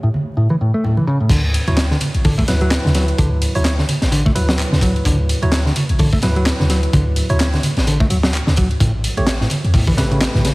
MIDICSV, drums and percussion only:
0, 0, Header, 1, 2, 480
1, 0, Start_track
1, 0, Tempo, 468750
1, 1337, Time_signature, 4, 2, 24, 8
1, 10795, End_track
2, 0, Start_track
2, 0, Title_t, "Drums"
2, 144, Note_on_c, 9, 63, 89
2, 247, Note_off_c, 9, 63, 0
2, 505, Note_on_c, 9, 63, 64
2, 608, Note_off_c, 9, 63, 0
2, 865, Note_on_c, 9, 64, 85
2, 967, Note_off_c, 9, 64, 0
2, 995, Note_on_c, 9, 63, 82
2, 1098, Note_off_c, 9, 63, 0
2, 1326, Note_on_c, 9, 36, 113
2, 1333, Note_on_c, 9, 42, 87
2, 1337, Note_on_c, 9, 63, 90
2, 1338, Note_off_c, 9, 42, 0
2, 1338, Note_on_c, 9, 42, 43
2, 1342, Note_on_c, 9, 49, 88
2, 1428, Note_off_c, 9, 36, 0
2, 1439, Note_off_c, 9, 63, 0
2, 1441, Note_off_c, 9, 42, 0
2, 1445, Note_off_c, 9, 49, 0
2, 1580, Note_on_c, 9, 42, 65
2, 1580, Note_on_c, 9, 51, 84
2, 1682, Note_off_c, 9, 51, 0
2, 1683, Note_off_c, 9, 42, 0
2, 1715, Note_on_c, 9, 63, 66
2, 1716, Note_on_c, 9, 42, 34
2, 1716, Note_on_c, 9, 64, 89
2, 1814, Note_on_c, 9, 38, 119
2, 1817, Note_off_c, 9, 63, 0
2, 1818, Note_off_c, 9, 42, 0
2, 1818, Note_on_c, 9, 42, 87
2, 1819, Note_off_c, 9, 64, 0
2, 1820, Note_off_c, 9, 42, 0
2, 1820, Note_on_c, 9, 39, 103
2, 1820, Note_on_c, 9, 42, 44
2, 1917, Note_off_c, 9, 38, 0
2, 1922, Note_off_c, 9, 39, 0
2, 1922, Note_off_c, 9, 42, 0
2, 1952, Note_on_c, 9, 38, 36
2, 2054, Note_on_c, 9, 42, 67
2, 2055, Note_off_c, 9, 38, 0
2, 2056, Note_on_c, 9, 63, 92
2, 2058, Note_off_c, 9, 42, 0
2, 2058, Note_on_c, 9, 42, 78
2, 2058, Note_on_c, 9, 51, 88
2, 2159, Note_off_c, 9, 63, 0
2, 2161, Note_off_c, 9, 42, 0
2, 2161, Note_off_c, 9, 51, 0
2, 2196, Note_on_c, 9, 42, 34
2, 2298, Note_off_c, 9, 42, 0
2, 2301, Note_on_c, 9, 42, 44
2, 2301, Note_on_c, 9, 46, 73
2, 2304, Note_on_c, 9, 36, 99
2, 2403, Note_off_c, 9, 42, 0
2, 2403, Note_off_c, 9, 46, 0
2, 2406, Note_off_c, 9, 36, 0
2, 2433, Note_on_c, 9, 64, 85
2, 2435, Note_on_c, 9, 63, 60
2, 2445, Note_on_c, 9, 36, 108
2, 2535, Note_off_c, 9, 64, 0
2, 2537, Note_off_c, 9, 63, 0
2, 2539, Note_on_c, 9, 42, 78
2, 2539, Note_on_c, 9, 51, 89
2, 2543, Note_on_c, 9, 38, 48
2, 2548, Note_off_c, 9, 36, 0
2, 2641, Note_off_c, 9, 42, 0
2, 2641, Note_off_c, 9, 51, 0
2, 2645, Note_off_c, 9, 38, 0
2, 2674, Note_on_c, 9, 42, 33
2, 2772, Note_off_c, 9, 42, 0
2, 2772, Note_on_c, 9, 42, 93
2, 2774, Note_on_c, 9, 38, 112
2, 2779, Note_off_c, 9, 42, 0
2, 2779, Note_on_c, 9, 39, 108
2, 2779, Note_on_c, 9, 42, 44
2, 2876, Note_off_c, 9, 38, 0
2, 2882, Note_off_c, 9, 39, 0
2, 2882, Note_off_c, 9, 42, 0
2, 2924, Note_on_c, 9, 63, 99
2, 2925, Note_on_c, 9, 38, 40
2, 3015, Note_on_c, 9, 42, 74
2, 3017, Note_off_c, 9, 42, 0
2, 3017, Note_on_c, 9, 42, 75
2, 3017, Note_on_c, 9, 51, 87
2, 3019, Note_off_c, 9, 38, 0
2, 3019, Note_on_c, 9, 38, 38
2, 3026, Note_off_c, 9, 63, 0
2, 3119, Note_off_c, 9, 42, 0
2, 3119, Note_off_c, 9, 51, 0
2, 3122, Note_off_c, 9, 38, 0
2, 3156, Note_on_c, 9, 42, 33
2, 3258, Note_off_c, 9, 42, 0
2, 3258, Note_on_c, 9, 63, 95
2, 3260, Note_on_c, 9, 42, 43
2, 3261, Note_on_c, 9, 36, 117
2, 3263, Note_off_c, 9, 42, 0
2, 3263, Note_on_c, 9, 42, 86
2, 3360, Note_off_c, 9, 63, 0
2, 3363, Note_off_c, 9, 36, 0
2, 3366, Note_off_c, 9, 42, 0
2, 3499, Note_on_c, 9, 42, 78
2, 3499, Note_on_c, 9, 51, 83
2, 3502, Note_off_c, 9, 42, 0
2, 3502, Note_on_c, 9, 42, 66
2, 3601, Note_off_c, 9, 51, 0
2, 3604, Note_off_c, 9, 42, 0
2, 3631, Note_on_c, 9, 63, 67
2, 3636, Note_on_c, 9, 42, 34
2, 3637, Note_on_c, 9, 64, 82
2, 3643, Note_off_c, 9, 42, 0
2, 3643, Note_on_c, 9, 42, 44
2, 3733, Note_off_c, 9, 63, 0
2, 3735, Note_on_c, 9, 38, 104
2, 3739, Note_off_c, 9, 64, 0
2, 3740, Note_off_c, 9, 42, 0
2, 3740, Note_on_c, 9, 39, 114
2, 3740, Note_on_c, 9, 42, 45
2, 3837, Note_off_c, 9, 38, 0
2, 3843, Note_off_c, 9, 39, 0
2, 3843, Note_off_c, 9, 42, 0
2, 3874, Note_on_c, 9, 38, 41
2, 3976, Note_off_c, 9, 38, 0
2, 3976, Note_on_c, 9, 63, 95
2, 3981, Note_on_c, 9, 42, 77
2, 3981, Note_on_c, 9, 51, 86
2, 3984, Note_off_c, 9, 42, 0
2, 3984, Note_on_c, 9, 42, 75
2, 4079, Note_off_c, 9, 63, 0
2, 4084, Note_off_c, 9, 51, 0
2, 4086, Note_off_c, 9, 42, 0
2, 4113, Note_on_c, 9, 38, 45
2, 4118, Note_on_c, 9, 42, 35
2, 4216, Note_off_c, 9, 38, 0
2, 4219, Note_off_c, 9, 42, 0
2, 4219, Note_on_c, 9, 42, 46
2, 4221, Note_off_c, 9, 42, 0
2, 4221, Note_on_c, 9, 42, 94
2, 4323, Note_off_c, 9, 42, 0
2, 4348, Note_on_c, 9, 63, 75
2, 4364, Note_on_c, 9, 36, 94
2, 4451, Note_off_c, 9, 63, 0
2, 4460, Note_on_c, 9, 42, 63
2, 4462, Note_off_c, 9, 42, 0
2, 4462, Note_on_c, 9, 42, 80
2, 4462, Note_on_c, 9, 51, 84
2, 4466, Note_off_c, 9, 36, 0
2, 4564, Note_off_c, 9, 42, 0
2, 4564, Note_off_c, 9, 51, 0
2, 4594, Note_on_c, 9, 38, 115
2, 4600, Note_on_c, 9, 42, 32
2, 4692, Note_on_c, 9, 64, 89
2, 4697, Note_off_c, 9, 38, 0
2, 4700, Note_off_c, 9, 42, 0
2, 4700, Note_on_c, 9, 39, 111
2, 4700, Note_on_c, 9, 42, 45
2, 4702, Note_off_c, 9, 42, 0
2, 4702, Note_on_c, 9, 42, 92
2, 4794, Note_off_c, 9, 64, 0
2, 4802, Note_off_c, 9, 39, 0
2, 4804, Note_off_c, 9, 42, 0
2, 4820, Note_on_c, 9, 63, 104
2, 4838, Note_on_c, 9, 38, 45
2, 4922, Note_off_c, 9, 63, 0
2, 4929, Note_on_c, 9, 36, 98
2, 4933, Note_on_c, 9, 42, 73
2, 4940, Note_off_c, 9, 38, 0
2, 4941, Note_off_c, 9, 42, 0
2, 4941, Note_on_c, 9, 42, 81
2, 4941, Note_on_c, 9, 51, 87
2, 5031, Note_off_c, 9, 36, 0
2, 5044, Note_off_c, 9, 42, 0
2, 5044, Note_off_c, 9, 51, 0
2, 5080, Note_on_c, 9, 42, 33
2, 5173, Note_on_c, 9, 36, 116
2, 5177, Note_on_c, 9, 63, 96
2, 5180, Note_off_c, 9, 42, 0
2, 5180, Note_on_c, 9, 42, 98
2, 5181, Note_off_c, 9, 42, 0
2, 5181, Note_on_c, 9, 42, 41
2, 5276, Note_off_c, 9, 36, 0
2, 5279, Note_off_c, 9, 63, 0
2, 5283, Note_off_c, 9, 42, 0
2, 5420, Note_on_c, 9, 42, 76
2, 5420, Note_on_c, 9, 51, 81
2, 5424, Note_off_c, 9, 42, 0
2, 5424, Note_on_c, 9, 42, 62
2, 5523, Note_off_c, 9, 51, 0
2, 5526, Note_off_c, 9, 42, 0
2, 5549, Note_on_c, 9, 64, 89
2, 5555, Note_on_c, 9, 63, 69
2, 5556, Note_on_c, 9, 42, 33
2, 5650, Note_on_c, 9, 38, 106
2, 5651, Note_off_c, 9, 64, 0
2, 5657, Note_off_c, 9, 63, 0
2, 5658, Note_off_c, 9, 42, 0
2, 5658, Note_on_c, 9, 42, 82
2, 5660, Note_off_c, 9, 42, 0
2, 5660, Note_on_c, 9, 39, 110
2, 5660, Note_on_c, 9, 42, 43
2, 5752, Note_off_c, 9, 38, 0
2, 5762, Note_off_c, 9, 39, 0
2, 5762, Note_off_c, 9, 42, 0
2, 5795, Note_on_c, 9, 38, 38
2, 5897, Note_off_c, 9, 38, 0
2, 5897, Note_on_c, 9, 42, 74
2, 5897, Note_on_c, 9, 51, 86
2, 5899, Note_off_c, 9, 42, 0
2, 5899, Note_on_c, 9, 42, 74
2, 5901, Note_on_c, 9, 63, 107
2, 6000, Note_off_c, 9, 51, 0
2, 6002, Note_off_c, 9, 42, 0
2, 6003, Note_off_c, 9, 63, 0
2, 6034, Note_on_c, 9, 42, 35
2, 6131, Note_on_c, 9, 46, 75
2, 6137, Note_off_c, 9, 42, 0
2, 6137, Note_on_c, 9, 42, 43
2, 6138, Note_on_c, 9, 36, 116
2, 6233, Note_off_c, 9, 46, 0
2, 6240, Note_off_c, 9, 42, 0
2, 6241, Note_off_c, 9, 36, 0
2, 6272, Note_on_c, 9, 63, 75
2, 6274, Note_on_c, 9, 36, 98
2, 6279, Note_on_c, 9, 64, 78
2, 6367, Note_on_c, 9, 42, 72
2, 6374, Note_off_c, 9, 63, 0
2, 6374, Note_on_c, 9, 38, 49
2, 6376, Note_off_c, 9, 36, 0
2, 6376, Note_off_c, 9, 42, 0
2, 6376, Note_on_c, 9, 42, 76
2, 6376, Note_on_c, 9, 51, 86
2, 6382, Note_off_c, 9, 64, 0
2, 6476, Note_off_c, 9, 38, 0
2, 6478, Note_off_c, 9, 42, 0
2, 6478, Note_off_c, 9, 51, 0
2, 6516, Note_on_c, 9, 42, 31
2, 6609, Note_off_c, 9, 42, 0
2, 6609, Note_on_c, 9, 42, 98
2, 6616, Note_on_c, 9, 38, 115
2, 6618, Note_off_c, 9, 42, 0
2, 6618, Note_on_c, 9, 39, 117
2, 6618, Note_on_c, 9, 42, 44
2, 6719, Note_off_c, 9, 38, 0
2, 6720, Note_off_c, 9, 39, 0
2, 6720, Note_off_c, 9, 42, 0
2, 6755, Note_on_c, 9, 63, 91
2, 6756, Note_on_c, 9, 38, 42
2, 6851, Note_off_c, 9, 38, 0
2, 6851, Note_on_c, 9, 38, 39
2, 6857, Note_off_c, 9, 63, 0
2, 6858, Note_on_c, 9, 42, 74
2, 6858, Note_on_c, 9, 51, 83
2, 6862, Note_off_c, 9, 42, 0
2, 6862, Note_on_c, 9, 42, 67
2, 6953, Note_off_c, 9, 38, 0
2, 6960, Note_off_c, 9, 51, 0
2, 6964, Note_off_c, 9, 42, 0
2, 6994, Note_on_c, 9, 42, 33
2, 7092, Note_on_c, 9, 63, 99
2, 7097, Note_off_c, 9, 42, 0
2, 7099, Note_on_c, 9, 42, 42
2, 7100, Note_on_c, 9, 36, 121
2, 7102, Note_off_c, 9, 42, 0
2, 7102, Note_on_c, 9, 42, 83
2, 7194, Note_off_c, 9, 63, 0
2, 7202, Note_off_c, 9, 36, 0
2, 7205, Note_off_c, 9, 42, 0
2, 7334, Note_on_c, 9, 42, 73
2, 7334, Note_on_c, 9, 51, 78
2, 7341, Note_off_c, 9, 42, 0
2, 7341, Note_on_c, 9, 42, 64
2, 7437, Note_off_c, 9, 51, 0
2, 7443, Note_off_c, 9, 42, 0
2, 7468, Note_on_c, 9, 42, 39
2, 7476, Note_off_c, 9, 42, 0
2, 7476, Note_on_c, 9, 42, 32
2, 7477, Note_on_c, 9, 64, 77
2, 7479, Note_on_c, 9, 63, 65
2, 7573, Note_off_c, 9, 42, 0
2, 7573, Note_on_c, 9, 42, 92
2, 7579, Note_off_c, 9, 64, 0
2, 7580, Note_off_c, 9, 42, 0
2, 7580, Note_on_c, 9, 39, 107
2, 7580, Note_on_c, 9, 42, 44
2, 7581, Note_off_c, 9, 63, 0
2, 7583, Note_on_c, 9, 38, 111
2, 7682, Note_off_c, 9, 39, 0
2, 7682, Note_off_c, 9, 42, 0
2, 7685, Note_off_c, 9, 38, 0
2, 7717, Note_on_c, 9, 42, 30
2, 7720, Note_on_c, 9, 38, 45
2, 7813, Note_on_c, 9, 63, 106
2, 7816, Note_off_c, 9, 42, 0
2, 7816, Note_on_c, 9, 42, 73
2, 7816, Note_on_c, 9, 51, 82
2, 7822, Note_off_c, 9, 38, 0
2, 7824, Note_off_c, 9, 42, 0
2, 7824, Note_on_c, 9, 42, 69
2, 7916, Note_off_c, 9, 63, 0
2, 7919, Note_off_c, 9, 51, 0
2, 7926, Note_off_c, 9, 42, 0
2, 7954, Note_on_c, 9, 42, 33
2, 7962, Note_on_c, 9, 38, 46
2, 8057, Note_off_c, 9, 42, 0
2, 8061, Note_on_c, 9, 42, 41
2, 8063, Note_off_c, 9, 42, 0
2, 8063, Note_on_c, 9, 42, 88
2, 8064, Note_off_c, 9, 38, 0
2, 8166, Note_off_c, 9, 42, 0
2, 8194, Note_on_c, 9, 63, 73
2, 8195, Note_on_c, 9, 36, 104
2, 8296, Note_on_c, 9, 42, 67
2, 8297, Note_off_c, 9, 63, 0
2, 8298, Note_off_c, 9, 36, 0
2, 8298, Note_off_c, 9, 42, 0
2, 8298, Note_on_c, 9, 42, 73
2, 8298, Note_on_c, 9, 51, 81
2, 8401, Note_off_c, 9, 42, 0
2, 8401, Note_off_c, 9, 51, 0
2, 8431, Note_on_c, 9, 38, 117
2, 8437, Note_on_c, 9, 42, 30
2, 8528, Note_on_c, 9, 64, 78
2, 8533, Note_off_c, 9, 38, 0
2, 8537, Note_off_c, 9, 42, 0
2, 8537, Note_on_c, 9, 42, 85
2, 8541, Note_off_c, 9, 42, 0
2, 8541, Note_on_c, 9, 39, 115
2, 8541, Note_on_c, 9, 42, 43
2, 8630, Note_off_c, 9, 64, 0
2, 8644, Note_off_c, 9, 39, 0
2, 8644, Note_off_c, 9, 42, 0
2, 8672, Note_on_c, 9, 38, 45
2, 8672, Note_on_c, 9, 63, 105
2, 8769, Note_on_c, 9, 42, 72
2, 8774, Note_off_c, 9, 38, 0
2, 8774, Note_off_c, 9, 63, 0
2, 8777, Note_off_c, 9, 42, 0
2, 8777, Note_on_c, 9, 42, 76
2, 8777, Note_on_c, 9, 51, 78
2, 8784, Note_on_c, 9, 36, 96
2, 8880, Note_off_c, 9, 42, 0
2, 8880, Note_off_c, 9, 51, 0
2, 8886, Note_off_c, 9, 36, 0
2, 8917, Note_on_c, 9, 42, 31
2, 9015, Note_on_c, 9, 36, 118
2, 9016, Note_on_c, 9, 63, 96
2, 9018, Note_off_c, 9, 42, 0
2, 9018, Note_on_c, 9, 42, 85
2, 9020, Note_off_c, 9, 42, 0
2, 9020, Note_on_c, 9, 42, 41
2, 9117, Note_off_c, 9, 36, 0
2, 9118, Note_off_c, 9, 63, 0
2, 9122, Note_off_c, 9, 42, 0
2, 9257, Note_on_c, 9, 42, 73
2, 9257, Note_on_c, 9, 51, 81
2, 9261, Note_off_c, 9, 42, 0
2, 9261, Note_on_c, 9, 42, 66
2, 9360, Note_off_c, 9, 51, 0
2, 9364, Note_off_c, 9, 42, 0
2, 9388, Note_on_c, 9, 63, 69
2, 9394, Note_on_c, 9, 64, 83
2, 9395, Note_on_c, 9, 42, 30
2, 9488, Note_on_c, 9, 38, 110
2, 9490, Note_off_c, 9, 63, 0
2, 9494, Note_off_c, 9, 42, 0
2, 9494, Note_on_c, 9, 42, 79
2, 9496, Note_off_c, 9, 64, 0
2, 9500, Note_off_c, 9, 42, 0
2, 9500, Note_on_c, 9, 39, 106
2, 9500, Note_on_c, 9, 42, 41
2, 9590, Note_off_c, 9, 38, 0
2, 9602, Note_off_c, 9, 39, 0
2, 9602, Note_off_c, 9, 42, 0
2, 9634, Note_on_c, 9, 38, 42
2, 9727, Note_on_c, 9, 42, 74
2, 9734, Note_on_c, 9, 63, 96
2, 9736, Note_off_c, 9, 38, 0
2, 9740, Note_off_c, 9, 42, 0
2, 9740, Note_on_c, 9, 42, 73
2, 9740, Note_on_c, 9, 51, 83
2, 9836, Note_off_c, 9, 63, 0
2, 9842, Note_off_c, 9, 42, 0
2, 9842, Note_off_c, 9, 51, 0
2, 9877, Note_on_c, 9, 42, 31
2, 9971, Note_on_c, 9, 36, 109
2, 9971, Note_on_c, 9, 46, 85
2, 9979, Note_off_c, 9, 42, 0
2, 9981, Note_on_c, 9, 42, 42
2, 10073, Note_off_c, 9, 46, 0
2, 10074, Note_off_c, 9, 36, 0
2, 10083, Note_off_c, 9, 42, 0
2, 10111, Note_on_c, 9, 36, 98
2, 10112, Note_on_c, 9, 64, 74
2, 10116, Note_on_c, 9, 63, 66
2, 10213, Note_off_c, 9, 36, 0
2, 10213, Note_on_c, 9, 38, 49
2, 10215, Note_off_c, 9, 64, 0
2, 10218, Note_off_c, 9, 63, 0
2, 10220, Note_on_c, 9, 42, 73
2, 10220, Note_on_c, 9, 51, 83
2, 10225, Note_off_c, 9, 42, 0
2, 10225, Note_on_c, 9, 42, 71
2, 10316, Note_off_c, 9, 38, 0
2, 10322, Note_off_c, 9, 51, 0
2, 10327, Note_off_c, 9, 42, 0
2, 10358, Note_on_c, 9, 42, 29
2, 10452, Note_off_c, 9, 42, 0
2, 10452, Note_on_c, 9, 42, 89
2, 10455, Note_on_c, 9, 38, 119
2, 10461, Note_off_c, 9, 42, 0
2, 10461, Note_on_c, 9, 39, 110
2, 10461, Note_on_c, 9, 42, 42
2, 10557, Note_off_c, 9, 38, 0
2, 10563, Note_off_c, 9, 39, 0
2, 10563, Note_off_c, 9, 42, 0
2, 10591, Note_on_c, 9, 38, 42
2, 10597, Note_on_c, 9, 63, 92
2, 10693, Note_off_c, 9, 38, 0
2, 10698, Note_on_c, 9, 38, 43
2, 10698, Note_on_c, 9, 42, 70
2, 10698, Note_on_c, 9, 51, 82
2, 10699, Note_off_c, 9, 42, 0
2, 10699, Note_off_c, 9, 63, 0
2, 10699, Note_on_c, 9, 42, 67
2, 10795, Note_off_c, 9, 38, 0
2, 10795, Note_off_c, 9, 42, 0
2, 10795, Note_off_c, 9, 51, 0
2, 10795, End_track
0, 0, End_of_file